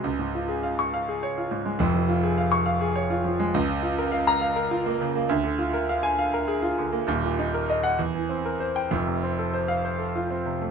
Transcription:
\new Staff \with { instrumentName = "Grand piano" } { \time 6/8 \key des \major \tempo 4. = 68 << { r4 r16 des'''8 r4 r16 | r4 r16 des'''8 r4 r16 | \key f \phrygian r4 r16 bes''8 r4 r16 | r4 r16 aes''8 r4 r16 |
r4 r16 ges''16 r4 r16 g''16 | r4 r16 f''8 r4 r16 | } \\ { des,16 aes,16 f'16 aes'16 f''8 f''16 aes'16 des''16 f'16 aes,16 aes16 | <f,, f,>16 f16 f'16 aes'16 f''8 f''16 aes'16 des''16 f'16 f16 aes16 | des,16 des16 f'16 bes'16 f''8 f''16 bes'16 f'16 bes16 des16 bes16 | d,16 d16 f'16 bes'16 f''8 f''16 bes'16 aes'16 f'16 d16 bes16 |
<ees,, ees,>16 bes,16 ees'16 bes'16 ees''8 e,16 e16 c'16 bes'16 c''8 | <f,, f,>16 c16 c'16 a'16 c''8 c''16 a'16 f'16 c'16 c16 a16 | } >> }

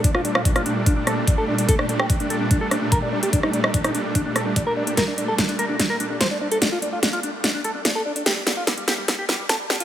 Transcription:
<<
  \new Staff \with { instrumentName = "Clean electric guitar" } { \time 4/4 \key g \minor \tempo 4 = 146 d'16 f'16 d'16 f'16 d'16 f'16 d'16 r16 d'16 d'16 a'16 d'16 d'16 a'16 d'16 d'16 | a'16 d'16 d'16 g'16 d'16 d'16 a'16 d'16 d'16 a'16 d'16 d'16 bes'16 d'16 d'16 g'16 | d'16 ees'16 d'16 ees'16 d'16 ees'16 d'16 r16 d'16 d'16 a'16 d'16 d'16 bes'16 d'16 d'16 | bes'16 d'16 d'16 a'16 d'16 d'16 bes'16 d'16 d'16 bes'16 d'16 d'16 c''16 d'16 d'16 a'16 |
d'16 f'16 d'16 f'16 d'16 f'16 d'16 r16 d'16 d'16 a'16 d'16 d'16 a'16 d'16 d'16 | g'16 g16 g16 f'16 g16 g16 g'16 g16 g16 g'16 g16 g16 a'16 g16 g16 f'16 | }
  \new Staff \with { instrumentName = "Supersaw synth" } { \clef bass \time 4/4 \key g \minor <bes, g a d'>1~ | <bes, g a d'>1~ | <bes, g a d'>1~ | <bes, g a d'>1~ |
<bes, g a d'>1~ | <bes, g a d'>1 | }
  \new DrumStaff \with { instrumentName = "Drums" } \drummode { \time 4/4 <hh bd>16 ss16 hh16 ss16 <hh bd>16 <hh ss>16 hh8 <hh bd>8 <hh ss>8 <hh bd>8. hh16 | <hh bd>16 ss16 hh16 ss16 <hh bd>16 hh16 hh8 <hh bd>8 <hh ss>8 <hh bd>8. hh16 | <hh bd>16 ss16 hh16 ss16 <hh bd>16 <hh ss>16 hh8 <hh bd>8 <hh ss>8 <hh bd>8. hh16 | <hh bd sn>8 hh8 <hh bd sn>16 hh16 hh8 <hh bd sn>8 hh8 <hh bd sn>8. hh16 |
<hh bd sn>8 hh8 <hh bd sn>16 hh16 hh8 <hh bd sn>8 hh8 <hh bd sn>8. hh16 | <hh bd sn>8 <hh sn>8 <hh bd sn>16 hh16 <hh sn>8 <hh bd sn>8 <hh sn>8 <hh bd sn>8 sn16 hh16 | }
>>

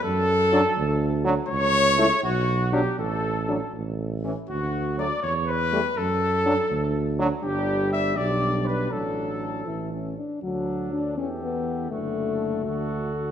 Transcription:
<<
  \new Staff \with { instrumentName = "Flugelhorn" } { \time 6/8 \key d \major \tempo 4. = 81 a'2~ a'8 r8 | cis''4. fis'4 g'8 | a'4. r4. | fis'4 d''8 cis''8 b'4 |
a'2~ a'8 r8 | g'4 e''8 d''4 b'8 | a'2~ a'8 r8 | d'4. g'4. |
fis'4. fis'4. | }
  \new Staff \with { instrumentName = "Trumpet" } { \time 6/8 \key d \major a'2~ a'8 r8 | cis''4. fis'4 g'8 | a'4. r4. | fis'4 d''8 cis''8 b'4 |
a'2~ a'8 r8 | g'4 e''8 d''4 b'8 | a'2~ a'8 r8 | a'4. a'4. |
a'4. a'4. | }
  \new Staff \with { instrumentName = "French horn" } { \time 6/8 \key d \major r4 d'16 r4 r16 d'16 r16 | r4 e'16 r4 r16 d'16 r16 | r4 d'16 r4 r16 cis'16 r16 | r4 a16 r4 r16 a16 r16 |
r4 d'16 r4 r16 d'16 r16 | d'4. d'4. | d'4. e'8 cis'8 d'8 | fis4 d'8 cis'8 b4 |
a2~ a8 r8 | }
  \new Staff \with { instrumentName = "Trombone" } { \clef bass \time 6/8 \key d \major r4 fis16 r4 r16 fis16 r16 | r4 a16 r4 r16 fis16 r16 | r4 fis16 r4 r16 e16 r16 | r4 fis16 r4 r16 g16 r16 |
r4 fis16 r4 r16 fis16 r16 | g4. g4. | fis4. e4 r8 | fis4. e4. |
d4. d4. | }
  \new Staff \with { instrumentName = "Tuba" } { \clef bass \time 6/8 \key d \major fis,4. d,4. | cis,4. b,,4. | a,,4. a,,4. | d,4. e,4. |
fis,4. d,4. | g,,4. b,,4. | a,,4. a,,4 r8 | d,4. e,4. |
fis,,4. d,4. | }
>>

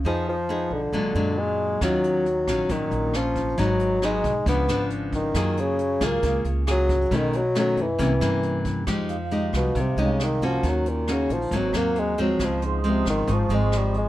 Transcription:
<<
  \new Staff \with { instrumentName = "Vibraphone" } { \time 4/4 \key ees \dorian \tempo 4 = 136 r1 | r1 | r1 | r1 |
r1 | \key f \minor r8 f''2~ f''16 r4 r16 | r1 | r8 c'''16 ees'''4~ ees'''16 des'''2 | }
  \new Staff \with { instrumentName = "Nylon-string guitar" } { \time 4/4 \key ees \dorian << { <ces' ees' aes'>8 r8 <ces' ees' aes'>8 r8 <fis aes d'>8 <fis aes d'>4. | <ges des' f'>4 r8 <ges des' f'>4. <des' f'>4 | <ges ces' ees'>4 <ges ces' ees'>8 r8 <f ces' d'>8 <f ces' d'>4. | <bes f' aes'>4 r8 <bes f' aes'>4. <bes f' aes'>8 r8 |
<dis a cis'>8 r8 <dis a cis'>8 r8 <e bes des'>8 <e bes des'>4. | \key f \minor <aes ees' g'>8 r8 <aes ees' g'>4. <aes ees' g'>4 <bes des' ges'>8~ | <bes des' ges'>4 <bes des' ges'>8 r8 <ges bes c'>8 <ges bes c'>4 <f aes c'>8~ | <f aes c'>4 <f aes c'>4. <f aes c'>4. | } \\ { f2 bes,2 | ees2 bes,2 | aes,2 des2 | ges2 des2 |
b,2 c2 | f2 c2 | ees2 aes,2 | des2 aes,2 | } >> }
  \new Staff \with { instrumentName = "Bassoon" } { \clef bass \time 4/4 \key ees \dorian f8 f4 d4. aes4 | ges2 ees4 f4 | ges4 aes4 ces'4 r8 ees8~ | ees8 des4 bes4 r8 ges4 |
dis8 fis8 fis8 e2 r8 | \key f \minor r4. b,8 c8 des8 ees8 f8 | ges8 bes,8 des8 f8 ges8 bes8 aes8 ges8 | f8 aes,8 c8 ees8 f8 aes8 g8 aes8 | }
  \new Staff \with { instrumentName = "Upright bass" } { \clef bass \time 4/4 \key ees \dorian f,4. ces,8 bes,,8 fis,4. | ees,4. bes,,8 bes,,8 bes,,4. | aes,,4. ces,8 des,8 aes,,4. | ges,4. des,8 des,8 des,4. |
b,,4. fis,8 c,8 g,4. | \key f \minor f,4. c,8 c,8 c,4. | ees,4. bes,,8 aes,,8 ees,4. | des,4. aes,,8 aes,,8 aes,,4. | }
  \new DrumStaff \with { instrumentName = "Drums" } \drummode { \time 4/4 r4 r4 r4 r4 | <hh bd ss>8 hh8 hh8 <hh bd ss>8 <hh bd>8 hh8 <hh ss>8 <hh bd>8 | <hh bd>8 hh8 <hh ss>8 <hh bd>8 <hh bd>8 <hh ss>8 hh8 <hh bd>8 | <hh bd ss>8 hh8 hh8 <hh bd ss>8 <hh bd>8 hh8 <hh ss>8 <hh bd>8 |
<hh bd>8 hh8 <hh ss>8 hh8 <hh bd>8 <hh ss>8 hh8 <hh bd>8 | <hh bd ss>8 hh8 hh8 <hh bd ss>8 <hh bd>8 hh8 <hh ss>8 <hh bd>8 | <hh bd>8 hh8 <hh ss>8 <hh bd>8 <hh bd>8 <hh ss>8 hh8 <hh bd>8 | <hh bd ss>8 hh8 hh8 <hh bd ss>8 <hh bd>8 hh8 <hh ss>8 <hh bd>8 | }
>>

